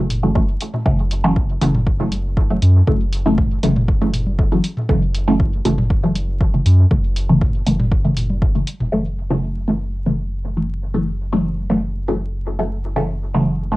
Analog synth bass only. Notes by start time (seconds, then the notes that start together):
Already playing: F#1
0.86 F#1
1.61 F#1
2.62 F#2
2.87 F#1
3.63 F#1
4.89 F#1
5.65 F#1
6.66 F#2
6.91 F#1
7.66 F#1
8.80 E1
8.92 F#1